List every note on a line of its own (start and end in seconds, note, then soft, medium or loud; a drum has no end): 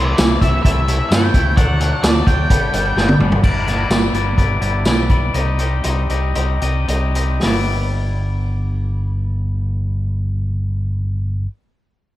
0.00 0.12 C2 medium
0.00 0.17 C3 medium
0.00 0.17 E3 loud
0.00 0.18 A3 loud
0.00 0.19 E4 loud
0.05 0.41 D5 loud
0.18 0.35 C2 loud
0.18 0.40 C3 medium
0.18 0.41 E3 medium
0.18 0.41 A3 loud
0.18 0.42 E4 loud
0.18 snare loud
0.18 closed hi-hat loud
0.18 tambourine loud
0.41 0.57 C2 medium
0.41 0.63 C3 medium
0.41 0.64 E3 loud
0.41 0.64 A3 loud
0.41 0.65 E4 medium
0.41 0.62 E5 medium
0.41 kick medium
0.41 closed hi-hat medium
0.63 0.97 C2 loud
0.63 0.86 C3 medium
0.63 0.87 E3 loud
0.63 0.87 A3 loud
0.63 0.88 E4 loud
0.63 1.11 E5 loud
0.63 kick medium
0.63 closed hi-hat medium
0.87 1.09 C3 medium
0.87 1.10 E3 loud
0.87 1.10 A3 medium
0.87 1.11 E4 loud
0.87 closed hi-hat medium
1.09 1.27 G2 medium
1.09 1.33 C3 loud
1.09 1.33 E3 medium
1.09 1.34 A3 loud
1.09 1.34 E4 loud
1.09 1.57 G5 loud
1.09 snare loud
1.09 closed hi-hat loud
1.09 tambourine loud
1.34 1.50 C#2 loud
1.34 1.56 C3 medium
1.34 1.56 E3 medium
1.34 1.56 A3 medium
1.34 1.56 E4 loud
1.34 kick medium
1.34 closed hi-hat medium
1.57 1.89 D2 medium
1.57 1.78 D3 medium
1.57 1.78 F#3 loud
1.57 1.79 A3 loud
1.57 1.80 D4 loud
1.57 2.00 F#5 loud
1.57 kick loud
1.57 closed hi-hat loud
1.79 2.01 D3 medium
1.79 2.02 F#3 medium
1.79 2.03 A3 loud
1.79 2.03 D4 loud
1.79 closed hi-hat medium
2.02 2.20 D2 loud
2.02 2.25 D3 medium
2.02 2.26 F#3 loud
2.02 2.26 A3 medium
2.02 2.26 D4 loud
2.02 2.27 D5 medium
2.02 snare loud
2.02 closed hi-hat loud
2.02 tambourine loud
2.26 2.43 D2 medium
2.26 2.48 D3 medium
2.26 2.49 F#3 loud
2.26 2.49 A3 medium
2.26 2.49 D4 medium
2.26 3.16 G5 loud
2.26 kick medium
2.26 closed hi-hat medium
2.49 2.66 G1 loud
2.49 2.71 G2 medium
2.49 2.72 D3 medium
2.49 2.72 G3 medium
2.49 2.73 B3 loud
2.49 2.73 D4 loud
2.49 kick medium
2.49 closed hi-hat loud
2.72 2.90 G1 loud
2.72 2.95 G2 medium
2.72 2.95 D3 medium
2.72 2.96 G3 medium
2.72 2.96 B3 medium
2.72 2.96 D4 medium
2.72 closed hi-hat medium
2.96 3.12 G1 medium
2.96 3.18 G2 loud
2.96 3.19 D3 medium
2.96 3.19 G3 medium
2.96 3.19 B3 loud
2.96 3.20 D4 loud
2.96 snare medium
3.09 high tom medium
3.19 3.36 G1 medium
3.19 3.41 G2 medium
3.19 3.42 D3 medium
3.19 3.41 G3 medium
3.19 3.42 B3 medium
3.19 3.42 D4 loud
3.19 mid tom loud
3.32 floor tom loud
3.43 3.85 G1 medium
3.43 3.66 G3 medium
3.43 3.66 B3 medium
3.43 3.66 E4 medium
3.43 3.67 B4 medium
3.43 3.67 D5 loud
3.43 kick loud
3.43 crash medium
3.67 3.89 G3 medium
3.67 3.89 B3 medium
3.67 3.90 E4 medium
3.67 3.90 B4 medium
3.67 3.90 D5 medium
3.67 snare soft
3.67 closed hi-hat medium
3.90 4.11 G1 medium
3.90 4.13 G3 medium
3.90 4.13 B3 medium
3.90 4.13 E4 medium
3.90 4.13 B4 medium
3.90 4.14 D5 medium
3.90 snare loud
3.90 closed hi-hat medium
3.90 tambourine loud
4.13 4.34 G1 medium
4.13 4.36 G3 medium
4.13 4.36 B3 medium
4.13 4.37 E4 medium
4.13 4.37 B4 medium
4.13 4.37 D5 medium
4.13 closed hi-hat medium
4.36 4.59 G1 medium
4.36 4.60 G3 medium
4.36 4.60 B3 medium
4.36 4.60 E4 medium
4.36 4.61 B4 medium
4.36 4.61 D5 medium
4.36 kick medium
4.36 closed hi-hat medium
4.61 4.82 G1 medium
4.61 4.85 G3 medium
4.61 4.84 B3 medium
4.61 4.85 E4 medium
4.61 4.85 B4 medium
4.61 4.86 D5 medium
4.61 closed hi-hat soft
4.85 5.28 B1 medium
4.85 5.09 G3 medium
4.85 5.09 B3 medium
4.85 5.09 E4 medium
4.85 5.09 B4 medium
4.85 5.10 D5 medium
4.85 snare loud
4.85 closed hi-hat medium
4.85 tambourine loud
5.09 5.33 G3 medium
5.09 5.33 B3 medium
5.09 5.33 E4 medium
5.09 5.33 B4 medium
5.09 5.33 D5 medium
5.09 kick medium
5.09 closed hi-hat medium
5.33 5.78 C2 medium
5.33 5.57 C3 medium
5.33 5.58 G3 medium
5.33 5.58 C4 medium
5.33 5.59 D#4 medium
5.33 5.59 G4 medium
5.33 5.59 D#5 medium
5.33 closed hi-hat medium
5.59 5.82 C3 medium
5.59 5.83 G3 medium
5.59 5.83 C4 medium
5.59 5.84 D#4 medium
5.59 5.84 G4 medium
5.59 5.84 D#5 medium
5.59 closed hi-hat medium
5.83 6.07 C2 medium
5.83 6.08 C3 medium
5.83 6.08 G3 medium
5.83 6.09 C4 medium
5.83 6.09 D#4 medium
5.83 6.09 G4 medium
5.83 6.10 D#5 medium
5.83 closed hi-hat medium
6.09 6.32 C2 medium
6.09 6.33 C3 medium
6.09 6.34 G3 medium
6.09 6.34 C4 medium
6.09 6.35 D#4 medium
6.09 6.35 G4 medium
6.09 6.35 D#5 medium
6.09 closed hi-hat medium
6.34 6.59 C2 medium
6.34 6.59 C3 medium
6.34 6.60 G3 medium
6.34 6.60 C4 medium
6.34 6.61 D#4 medium
6.34 6.61 G4 medium
6.34 6.62 D#5 medium
6.34 closed hi-hat medium
6.61 6.85 C2 medium
6.61 6.86 C3 medium
6.61 6.87 G3 medium
6.61 6.87 C4 medium
6.61 6.88 D#4 medium
6.61 6.88 G4 medium
6.61 6.88 D#5 medium
6.61 closed hi-hat medium
6.87 7.36 C2 medium
6.87 7.14 C3 medium
6.87 7.14 G3 medium
6.87 7.15 C4 medium
6.87 7.15 D#4 medium
6.87 7.15 G4 medium
6.87 7.16 D#5 medium
6.87 closed hi-hat medium
7.15 7.41 C3 medium
7.15 7.40 G3 medium
7.15 7.41 C4 medium
7.15 7.41 D#4 medium
7.15 7.42 G4 medium
7.15 7.42 D#5 medium
7.15 closed hi-hat medium
7.41 11.46 G1 medium
7.41 11.47 G3 medium
7.41 11.49 B3 medium
7.41 11.49 E4 medium
7.41 11.51 B4 medium
7.41 11.51 D5 medium
7.41 snare medium
7.41 open hi-hat medium